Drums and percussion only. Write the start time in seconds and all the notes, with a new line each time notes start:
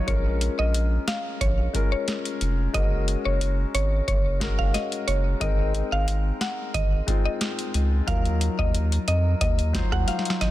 0.08 kick, closed hi-hat
0.41 closed hi-hat
0.74 closed hi-hat
1.08 snare, closed hi-hat
1.41 kick, closed hi-hat
1.74 kick, closed hi-hat
2.08 snare, closed hi-hat
2.25 closed hi-hat
2.41 closed hi-hat
2.74 kick, closed hi-hat
3.08 closed hi-hat
3.41 closed hi-hat
3.75 closed hi-hat
4.08 kick, closed hi-hat
4.41 kick, snare, closed hi-hat
4.59 kick
4.74 snare, closed hi-hat
4.92 closed hi-hat
5.08 closed hi-hat
5.41 kick, closed hi-hat
5.75 closed hi-hat
6.08 closed hi-hat
6.41 snare, closed hi-hat
6.74 kick, closed hi-hat
7.08 kick, closed hi-hat
7.41 snare, closed hi-hat
7.59 closed hi-hat
7.74 closed hi-hat
8.08 kick, closed hi-hat
8.25 closed hi-hat
8.41 closed hi-hat
8.59 kick
8.75 closed hi-hat
8.92 closed hi-hat
9.08 closed hi-hat
9.41 kick, closed hi-hat
9.59 closed hi-hat
9.74 kick, snare, closed hi-hat
9.92 kick, cross-stick
10.08 snare, closed hi-hat
10.19 snare
10.25 closed hi-hat
10.30 snare
10.41 snare, closed hi-hat